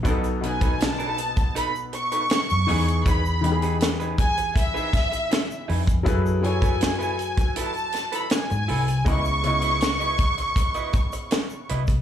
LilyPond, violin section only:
\new Staff \with { instrumentName = "Violin section" } { \time 4/4 \key cis \minor \tempo 4 = 80 r8 gis''8 a''4 b''8 cis'''4. | b''4 r8 gis''8 e''4. r8 | r8 gis''4. a''8. b''16 gis''4 | cis'''2.~ cis'''8 r8 | }